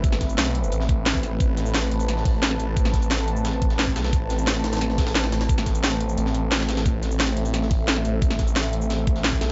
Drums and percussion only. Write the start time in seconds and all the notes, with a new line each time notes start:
0.04 kick, closed hi-hat, shaker
0.12 snare
0.21 kick, snare, closed hi-hat, shaker
0.29 closed hi-hat, shaker
0.38 snare, closed hi-hat, shaker
0.55 closed hi-hat
0.64 shaker
0.72 closed hi-hat, shaker
0.80 snare
0.89 kick, closed hi-hat
1.06 snare, closed hi-hat, shaker
1.15 kick
1.23 snare, closed hi-hat, shaker
1.40 kick, closed hi-hat, shaker
1.57 snare, closed hi-hat, shaker
1.66 shaker
1.74 snare, closed hi-hat, shaker
1.83 closed hi-hat
1.91 closed hi-hat
2.00 closed hi-hat, shaker
2.08 snare, closed hi-hat, shaker
2.17 snare
2.25 kick, closed hi-hat, open hi-hat
2.42 snare, closed hi-hat, shaker
2.51 snare
2.59 closed hi-hat, shaker
2.77 kick, closed hi-hat, shaker
2.85 snare
2.94 kick, snare, closed hi-hat, shaker
3.02 closed hi-hat, shaker
3.11 snare, closed hi-hat, shaker
3.28 closed hi-hat
3.36 shaker
3.45 snare, closed hi-hat, shaker
3.53 closed hi-hat
3.62 kick, closed hi-hat
3.70 snare, closed hi-hat
3.79 snare, closed hi-hat, shaker
3.87 kick
3.96 snare, closed hi-hat, shaker
4.04 snare, closed hi-hat
4.13 kick, closed hi-hat, shaker
4.30 snare, closed hi-hat, shaker
4.39 shaker
4.47 snare, closed hi-hat, shaker
4.56 closed hi-hat
4.64 snare, closed hi-hat
4.73 snare, closed hi-hat, shaker
4.77 snare, closed hi-hat
4.81 snare, closed hi-hat, shaker
4.90 snare
4.98 kick, snare, closed hi-hat
5.07 snare, closed hi-hat
5.15 snare, closed hi-hat, shaker
5.24 snare, closed hi-hat
5.32 snare, closed hi-hat, shaker
5.41 snare, closed hi-hat
5.49 kick, closed hi-hat, shaker
5.58 snare, shaker
5.66 kick, snare, closed hi-hat, shaker
5.75 closed hi-hat, shaker
5.83 snare, closed hi-hat, shaker
6.00 closed hi-hat
6.09 shaker
6.17 closed hi-hat, shaker
6.26 snare
6.34 closed hi-hat
6.51 snare, closed hi-hat, shaker
6.60 snare, closed hi-hat
6.69 snare, closed hi-hat, shaker
6.77 snare, closed hi-hat, shaker
6.86 kick, closed hi-hat, shaker
7.03 snare, closed hi-hat, shaker
7.11 shaker
7.20 snare, closed hi-hat, shaker
7.28 closed hi-hat
7.37 closed hi-hat
7.45 closed hi-hat, shaker
7.54 snare, closed hi-hat, shaker
7.62 snare
7.71 kick, closed hi-hat, open hi-hat
7.88 snare, closed hi-hat, shaker
7.96 snare
8.05 closed hi-hat, shaker
8.22 kick, closed hi-hat, shaker
8.30 snare
8.39 kick, snare, closed hi-hat, shaker
8.47 closed hi-hat, shaker
8.56 snare, closed hi-hat, shaker
8.73 closed hi-hat
8.82 shaker
8.90 snare, closed hi-hat, shaker
8.99 closed hi-hat
9.07 kick, closed hi-hat
9.16 snare, closed hi-hat
9.24 snare, closed hi-hat, shaker
9.33 kick
9.41 snare, closed hi-hat, shaker